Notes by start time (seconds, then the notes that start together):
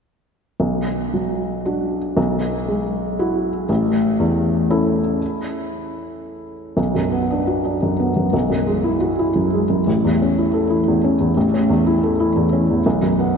0.60 B1
1.13 F#3
1.65 D4 F#4
2.17 B1
2.68 G#3
3.19 E4 F#4
3.69 A1
4.19 E2
4.70 C#4 E4 A4
6.77 B1
6.95 F#2
7.12 B3
7.31 D4
7.47 F#4
7.65 D4
7.83 F#2
8.00 B3
8.17 F#2
8.33 B1
8.50 F#2
8.67 G#3
8.84 E4
9.01 F#4
9.19 E4
9.36 F#2
9.54 G#3
9.70 F#2
9.87 A1
10.04 E2
10.22 C#4
10.38 E4
10.54 A4
10.70 E4
10.88 E2
11.04 C#4
11.20 E2
11.37 A1
11.54 C#4
11.70 E2
11.87 E4
12.03 A4
12.20 E4
12.36 E2
12.53 C#4
12.70 E2
12.86 B1
13.03 F#2
13.19 B3